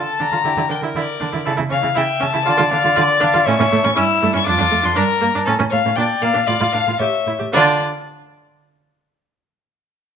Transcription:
0.00 0.41 A4 medium
0.00 0.23 A5 loud
0.20 0.25 D3 medium
0.20 0.25 D4 medium
0.20 0.70 A#5 loud
0.32 0.37 D3 medium
0.32 0.37 F4 medium
0.44 0.49 D3 loud
0.44 0.50 E4 medium
0.44 0.69 G4 medium
0.57 0.62 D3 medium
0.57 0.62 E4 medium
0.69 0.75 D3 medium
0.69 0.75 D4 medium
0.69 1.44 A#4 medium
0.69 0.78 G5 loud
0.82 0.87 D3 medium
0.82 0.88 E4 medium
0.95 1.00 D3 loud
0.95 1.01 E4 loud
0.95 1.45 D5 medium
1.20 1.26 D3 medium
1.20 1.25 D4 medium
1.32 1.39 D3 medium
1.32 1.38 E4 medium
1.45 1.51 C#3 loud
1.45 1.50 E4 loud
1.45 1.54 A4 medium
1.57 1.64 C#3 medium
1.57 1.62 E4 medium
1.69 1.77 C#3 medium
1.69 1.75 C#4 medium
1.69 1.79 C#5 medium
1.69 1.98 F5 loud
1.82 1.89 C#3 medium
1.82 1.87 E4 medium
1.94 2.02 C#3 loud
1.94 2.00 E4 loud
1.94 2.45 E5 loud
1.94 2.24 G5 loud
2.20 2.27 C#3 medium
2.20 2.25 C#4 loud
2.20 2.71 A5 loud
2.33 2.39 C#3 medium
2.33 2.38 E4 medium
2.45 2.52 D3 loud
2.45 2.50 F4 loud
2.45 3.46 D5 loud
2.57 2.64 D3 medium
2.57 2.63 F4 medium
2.71 2.77 D3 medium
2.71 2.76 D4 medium
2.71 2.98 F5 loud
2.83 2.90 D3 medium
2.83 2.88 F4 loud
2.95 3.02 D3 loud
2.95 3.01 F4 loud
2.95 3.23 D5 loud
3.20 3.27 D3 medium
3.20 3.25 D4 loud
3.20 3.47 F5 loud
3.34 3.40 D3 medium
3.34 3.39 F4 medium
3.45 3.52 A2 loud
3.45 3.52 C#4 loud
3.45 3.95 C#5 loud
3.45 3.86 E5 loud
3.60 3.64 A2 medium
3.60 3.65 C#4 medium
3.72 3.77 A2 loud
3.72 3.77 A3 loud
3.84 3.90 A2 loud
3.84 3.89 C#4 loud
3.84 3.98 C#6 loud
3.95 4.02 G2 loud
3.95 4.01 C#4 loud
3.95 4.45 E4 loud
3.95 4.34 E6 loud
4.22 4.27 G2 loud
4.22 4.27 A3 loud
4.33 4.40 G2 medium
4.33 4.39 C#4 medium
4.33 4.46 C#6 loud
4.46 4.52 F2 loud
4.46 4.51 D4 loud
4.46 4.95 F4 loud
4.46 4.86 D6 loud
4.58 4.65 F2 medium
4.58 4.63 D4 medium
4.71 4.76 F2 loud
4.71 4.76 A3 medium
4.82 4.89 F2 loud
4.82 4.87 D4 loud
4.82 4.98 C6 loud
4.95 5.02 G2 loud
4.95 5.00 D4 loud
4.95 5.45 A#4 loud
4.95 5.46 A#5 loud
5.21 5.27 G2 medium
5.21 5.26 A#3 loud
5.35 5.40 G2 medium
5.35 5.40 D4 medium
5.45 5.52 A2 loud
5.45 5.52 C#4 loud
5.45 5.53 A4 loud
5.59 5.64 A2 medium
5.59 5.64 C#4 medium
5.70 5.77 A2 medium
5.70 5.77 A3 medium
5.70 5.78 C#5 loud
5.70 5.97 F5 loud
5.85 5.90 A2 loud
5.85 5.90 C#4 medium
5.95 6.02 A#2 loud
5.95 6.02 D4 loud
5.95 6.45 D5 loud
5.95 6.23 G5 loud
6.22 6.27 A#2 medium
6.22 6.27 A#3 loud
6.22 6.48 F5 loud
6.34 6.40 A#2 medium
6.34 6.39 D4 medium
6.46 6.53 A2 loud
6.46 6.52 F4 loud
6.46 6.74 D5 loud
6.46 7.01 F5 loud
6.61 6.66 A2 medium
6.61 6.66 F4 medium
6.73 6.79 A2 medium
6.73 6.78 D4 medium
6.73 6.99 F5 loud
6.87 6.92 A2 medium
6.87 6.93 F4 medium
6.99 7.05 A2 medium
6.99 7.05 G4 medium
6.99 7.26 C#5 medium
6.99 7.52 E5 loud
7.26 7.32 A2 medium
7.26 7.32 E4 medium
7.39 7.45 A2 medium
7.39 7.44 G4 medium
7.52 7.82 D3 loud
7.52 7.82 D4 loud
7.52 7.82 F4 loud
7.52 7.82 D5 loud

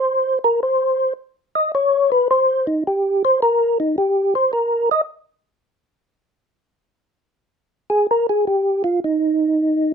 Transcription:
0.00 0.39 C5 medium
0.44 0.60 A#4 medium
0.63 1.13 C5 medium
1.55 1.72 D#5 medium
1.75 2.10 C#5 medium
2.12 2.28 B4 medium
2.31 2.66 C5 loud
2.67 2.84 D#4 medium
2.87 3.23 G4 medium
3.25 3.40 C5 loud
3.42 3.78 A#4 medium
3.80 3.96 D#4 medium
3.98 4.34 G4 medium
4.35 4.52 C5 loud
4.53 4.89 A#4 medium
4.91 5.01 D#5 loud
7.90 8.07 G#4 medium
8.11 8.27 A#4 medium
8.29 8.45 G#4 medium
8.47 8.83 G4 medium
8.84 9.00 F4 medium
9.04 9.92 D#4 medium

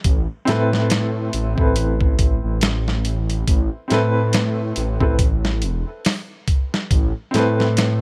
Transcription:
0.04 0.27 A1 loud
0.04 kick loud
0.04 closed hi-hat medium
0.45 1.30 A2 loud
0.45 1.51 C4 medium
0.45 1.52 E4 medium
0.45 1.53 A4 medium
0.45 snare soft
0.45 closed hi-hat medium
0.51 1.54 B4 loud
0.73 snare soft
0.90 snare loud
0.90 closed hi-hat medium
1.33 1.55 A1 loud
1.33 closed hi-hat medium
1.56 2.39 A1 loud
1.56 3.85 C4 medium
1.56 3.86 E4 medium
1.56 3.87 A4 medium
1.56 kick loud
1.61 3.88 B4 medium
1.76 closed hi-hat medium
2.01 kick loud
2.19 kick medium
2.19 closed hi-hat medium
2.44 3.45 A1 medium
2.61 snare loud
2.61 closed hi-hat medium
2.88 snare soft
3.05 closed hi-hat medium
3.30 closed hi-hat soft
3.48 3.70 A1 loud
3.48 kick loud
3.48 closed hi-hat medium
3.88 4.73 A2 loud
3.88 4.94 C4 medium
3.88 4.95 E4 medium
3.88 4.96 A4 medium
3.88 closed hi-hat medium
3.92 4.97 B4 loud
3.92 snare soft
4.33 snare loud
4.33 closed hi-hat medium
4.76 4.98 A1 loud
4.76 closed hi-hat medium
5.00 5.65 A1 loud
5.00 5.10 C4 medium
5.00 5.11 E4 medium
5.00 5.11 A4 medium
5.00 5.12 B4 medium
5.00 kick medium
5.19 kick loud
5.19 closed hi-hat medium
5.45 snare soft
5.62 5.84 E1 medium
5.62 closed hi-hat medium
6.05 snare loud
6.05 open hi-hat medium
6.48 kick loud
6.48 closed hi-hat medium
6.74 snare medium
6.91 7.13 A1 loud
6.91 kick loud
6.91 closed hi-hat medium
7.31 8.01 A2 loud
7.31 8.01 C4 loud
7.31 8.01 E4 medium
7.31 8.01 A4 medium
7.31 closed hi-hat medium
7.36 8.01 B4 loud
7.36 snare soft
7.60 snare soft
7.77 snare loud
7.77 closed hi-hat medium

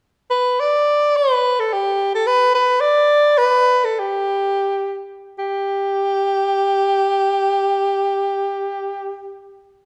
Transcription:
0.31 0.61 B4 medium
0.60 1.18 D5 medium
1.17 1.61 B4 medium
1.60 1.75 A4 medium
1.73 2.14 G4 medium
2.15 2.28 A4 medium
2.27 2.54 B4 medium
2.55 2.82 B4 medium
2.81 3.39 D5 medium
3.38 3.86 B4 medium
3.85 4.01 A4 medium
3.99 5.00 G4 medium
5.39 9.34 G4 medium

